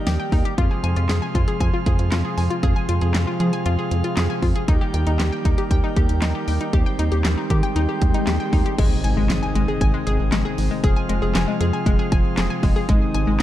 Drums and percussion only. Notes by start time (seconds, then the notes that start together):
0.07 snare, closed hi-hat
0.32 kick, open hi-hat
0.45 closed hi-hat
0.58 kick, closed hi-hat
0.84 closed hi-hat
0.96 closed hi-hat
1.09 snare, clap, closed hi-hat
1.35 kick, closed hi-hat
1.48 closed hi-hat
1.60 kick, closed hi-hat
1.86 kick, closed hi-hat
1.99 closed hi-hat
2.12 snare, clap, closed hi-hat
2.38 open hi-hat
2.50 closed hi-hat
2.63 kick, closed hi-hat
2.89 closed hi-hat
3.01 closed hi-hat
3.15 snare, clap, closed hi-hat
3.40 closed hi-hat
3.53 closed hi-hat
3.66 closed hi-hat
3.91 closed hi-hat
4.04 closed hi-hat
4.17 snare, clap, closed hi-hat
4.42 kick, open hi-hat
4.56 closed hi-hat
4.68 kick, closed hi-hat
4.94 closed hi-hat
5.07 closed hi-hat
5.20 snare, clap, closed hi-hat
5.45 kick, closed hi-hat
5.58 closed hi-hat
5.71 kick, closed hi-hat
5.96 kick, closed hi-hat
6.09 closed hi-hat
6.22 snare, clap, closed hi-hat
6.48 open hi-hat
6.61 closed hi-hat
6.73 kick, closed hi-hat
6.99 closed hi-hat
7.12 closed hi-hat
7.25 snare, clap, closed hi-hat
7.50 kick, closed hi-hat
7.63 closed hi-hat
7.76 closed hi-hat
8.02 kick, closed hi-hat
8.14 closed hi-hat
8.27 snare, clap, closed hi-hat
8.53 kick, open hi-hat
8.66 closed hi-hat
8.78 kick, closed hi-hat, crash
9.04 closed hi-hat
9.30 snare, clap, closed hi-hat
9.55 closed hi-hat
9.81 kick, closed hi-hat
10.07 closed hi-hat
10.32 snare, clap, closed hi-hat
10.58 open hi-hat
10.84 kick, closed hi-hat
11.09 closed hi-hat
11.35 snare, clap, closed hi-hat
11.61 closed hi-hat
11.86 kick, closed hi-hat
12.12 kick, closed hi-hat
12.38 snare, clap, closed hi-hat
12.63 kick, open hi-hat
12.89 kick, closed hi-hat
13.14 closed hi-hat